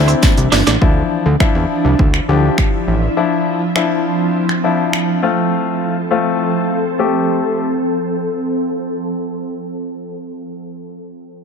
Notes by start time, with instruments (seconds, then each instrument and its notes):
Already playing: analog synth bass D2, ambient pad E3 C4 D4, grand piano C4 D4 E4
0.08 clean electric guitar C4, closed hi-hat, shaker
0.23 muted clean electric guitar stroke, kick, snare, closed hi-hat, tambourine, shaker
0.38 analog synth bass C2, closed hi-hat, shaker
0.52 analog synth bass G1, clean electric guitar D4, snare, open hi-hat, tambourine, shaker
0.67 analog synth bass A1, clean electric guitar D4, snare, closed hi-hat, shaker
0.81 analog synth bass D2, grand piano F3 D4 E4, ambient pad F3 D4 E4, kick
1.26 analog synth bass D2
1.40 grand piano F3 D4 E4, finger snap, kick
1.55 analog synth bass E2
1.85 analog synth bass C2
1.99 analog synth bass D2, kick
2.14 finger snap
2.28 analog synth bass D2, grand piano F3 D4 G4
2.58 finger snap, kick
2.88 analog synth bass A1
3.17 grand piano F3 D4 E4, ambient pad C4
3.75 grand piano F3 D4 E4, finger snap
4.49 finger snap
4.64 grand piano F3 D4 E4
4.93 finger snap
5.23 grand piano A3 C4 F4, ambient pad C4 A4
6.11 grand piano A3 C4 F4
6.99 grand piano A3 C4 G4